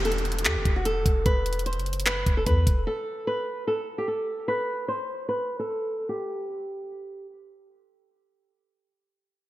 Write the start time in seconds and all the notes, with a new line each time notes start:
Already playing: E1, downlifter
0.05 A4, closed hi-hat
0.12 closed hi-hat
0.18 closed hi-hat
0.25 closed hi-hat
0.32 closed hi-hat
0.39 closed hi-hat
0.45 E2 G4, clap, closed hi-hat
0.56 E1
0.65 E1, kick, closed hi-hat
0.76 F#4
0.85 A4, closed hi-hat
1.06 E1, kick, closed hi-hat
1.26 E1 B4, kick, closed hi-hat
1.46 closed hi-hat
1.53 closed hi-hat
1.59 closed hi-hat
1.66 C5, closed hi-hat
1.73 closed hi-hat
1.77 F#1, closed hi-hat
1.86 closed hi-hat
1.93 closed hi-hat
2.00 closed hi-hat
2.06 B4, clap, closed hi-hat
2.27 E1, kick, closed hi-hat
2.37 A4
2.46 E2 B4, kick, closed hi-hat
2.67 E1, kick, closed hi-hat
2.87 A4
3.27 B4
3.67 A4
3.98 G4
4.08 A4
4.48 B4
4.88 C5
5.29 B4
5.59 A4
6.09 G4